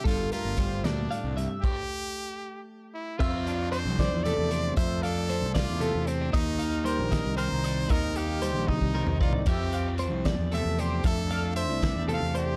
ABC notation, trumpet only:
X:1
M:6/8
L:1/8
Q:3/8=76
K:F
V:1 name="Trumpet"
F F2 D2 z | G4 z E | F2 c2 d2 | c A2 F2 C |
_E2 B2 c2 | B G2 _E2 F | G2 z2 e G | A2 e2 f G |]